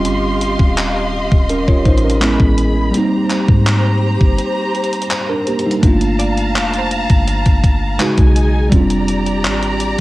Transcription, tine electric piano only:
0.00 2.16 G3 medium
0.00 1.10 C4 medium
0.00 1.11 C#4 medium
0.00 1.12 F4 medium
1.50 1.67 C#4 medium
1.50 1.67 A#4 medium
1.68 1.85 F4 medium
1.68 1.85 C#5 medium
1.86 2.03 D#4 medium
1.86 2.03 C5 medium
2.04 2.21 C#4 medium
2.04 2.38 A#4 medium
2.21 2.93 G#3 medium
2.21 2.94 B3 medium
2.21 2.94 C#4 medium
2.21 2.95 E4 medium
2.91 5.06 G3 medium
2.91 5.06 A#3 medium
2.91 5.07 C4 medium
2.97 5.08 D#4 medium
5.29 5.47 D4 medium
5.29 5.46 A#4 medium
5.48 5.65 A#3 medium
5.48 5.65 G4 medium
5.66 6.00 G3 medium
5.66 6.00 D#4 medium
5.81 7.95 A3 medium
5.81 7.96 A#3 medium
5.85 7.97 D4 medium
5.85 7.98 F4 medium
7.99 8.72 C#3 medium
7.99 8.72 G#3 medium
7.99 8.73 D#4 medium
7.99 8.73 F#4 medium
8.69 10.01 G3 medium
8.69 10.01 C4 medium
8.73 8.79 C#4 medium
8.73 10.01 F4 medium
8.80 10.01 D4 medium

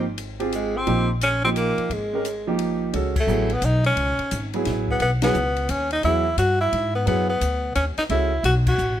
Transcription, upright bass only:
0.00 0.83 G#1 medium
0.87 1.74 A#1 medium
1.78 muted upright bass stroke soft
1.90 2.89 G#1 medium
2.93 3.26 C#2 medium
3.27 3.61 A1 medium
3.62 3.96 B1 medium
3.96 4.17 C#2 medium
4.19 muted upright bass stroke soft
4.32 4.65 G#1 medium
4.66 4.99 A1 medium
5.00 5.34 B1 medium
5.35 5.68 C#2 medium
5.69 6.03 D#2 medium
6.04 6.37 E2 medium
6.37 6.71 G2 medium
6.73 7.06 G#2 medium
7.07 7.40 F#2 medium
7.41 7.75 D2 medium
7.76 7.96 D#2 medium
7.98 muted upright bass stroke soft
8.09 8.43 C#2 medium
8.44 8.77 B1 medium
8.78 9.00 A1 medium

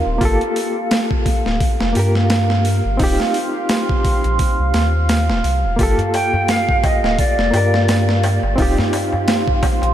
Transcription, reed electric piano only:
0.00 0.16 C4 medium
0.00 0.17 D#4 medium
0.00 0.19 F4 medium
0.00 0.19 A#4 medium
0.18 1.90 A#3 medium
0.18 1.92 F4 medium
0.23 1.93 G4 medium
0.23 1.94 A4 medium
1.93 2.95 A#3 medium
1.93 2.96 F4 medium
1.97 2.97 G4 medium
1.97 2.98 A#4 medium
2.97 4.69 C4 medium
2.97 4.70 D#4 medium
3.02 4.72 F4 medium
3.02 4.73 G4 medium
5.76 7.48 A#3 medium
5.76 7.50 F4 medium
5.81 7.51 G4 medium
5.81 7.52 A4 medium
7.51 8.53 A#3 medium
7.51 8.54 F4 medium
7.55 8.55 G4 medium
7.55 8.56 A#4 medium
8.56 9.94 C4 medium
8.56 9.94 D#4 medium
8.60 9.94 F4 medium
8.60 9.94 G4 medium

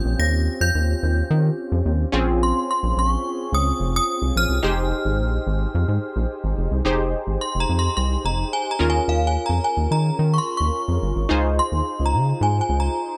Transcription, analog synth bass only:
0.05 0.15 A#1 loud
0.19 0.48 D#2 loud
0.61 0.71 F2 loud
0.75 0.94 D#2 loud
1.03 1.22 D#2 loud
1.31 1.50 D#3 loud
1.72 1.82 F2 loud
1.86 2.05 D#2 loud
2.13 2.52 A#1 loud
2.83 2.93 A#1 loud
2.97 3.16 A#1 loud
3.52 3.72 C#2 loud
3.80 4.00 F1 loud
4.22 4.32 C2 medium
4.36 4.46 A#1 loud
4.49 4.59 C2 medium
4.64 4.93 F1 loud
5.05 5.21 G#1 loud
5.19 5.39 A#1 loud
5.47 5.66 G#1 loud
5.75 5.84 F2 loud
5.88 5.98 G#2 loud
6.16 6.26 A#1 loud
6.44 6.54 G#1 medium
6.58 6.68 F1 loud
6.71 6.81 C2 loud
6.85 7.14 F1 loud
7.27 7.37 G#1 medium
7.55 7.65 F1 loud
7.69 7.89 F2 loud
7.97 8.17 C2 loud
8.25 8.44 F1 medium
8.80 9.00 D#2 loud
9.08 9.37 D#2 loud
9.49 9.59 F2 loud
9.77 9.87 D#2 medium
9.91 10.11 D#3 loud
10.19 10.38 D#3 loud
10.60 10.70 D#2 medium
10.88 10.98 F2 medium
11.02 11.12 G1 loud
11.16 11.26 G#1 medium
11.31 11.60 C#2 loud
11.72 11.82 D#2 medium
12.00 12.15 C#2 medium
12.14 12.33 C#3 loud
12.41 12.61 G#2 loud
12.69 12.89 C#2 medium

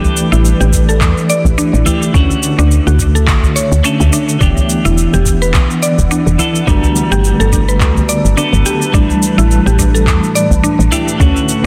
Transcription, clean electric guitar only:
0.00 1.82 E3 medium
0.00 1.83 A3 medium
0.00 1.83 D4 medium
0.00 1.84 G4 medium
1.85 2.11 E3 medium
1.85 2.11 A3 medium
1.85 2.12 D4 medium
1.85 2.12 G4 medium
2.13 3.80 D3 medium
2.13 3.81 A3 medium
2.13 3.82 C#4 medium
2.17 3.82 F#4 loud
3.83 4.37 D3 medium
3.83 4.38 A3 medium
3.83 4.38 C#4 medium
3.83 4.38 A4 medium
4.39 6.35 E3 medium
4.39 6.36 B3 medium
4.39 6.36 D4 medium
4.43 6.37 G4 loud
6.38 6.64 E3 medium
6.38 6.64 B3 medium
6.38 6.65 D4 medium
6.38 6.65 A4 medium
6.66 8.33 D3 medium
6.66 8.35 G3 medium
6.66 8.34 A3 medium
6.66 8.35 B3 medium
8.37 8.90 D3 medium
8.37 8.91 A3 medium
8.37 8.91 B3 medium
8.37 8.91 A4 medium
8.92 10.88 E3 loud
8.92 10.90 G3 loud
8.92 10.89 A3 medium
8.92 10.89 D4 medium
10.91 11.17 E3 medium
10.91 11.17 A3 medium
10.91 11.17 D4 medium
10.91 11.18 G4 medium
11.18 11.66 D3 medium
11.18 11.66 A3 medium
11.18 11.66 C#4 medium
11.18 11.66 F#4 loud

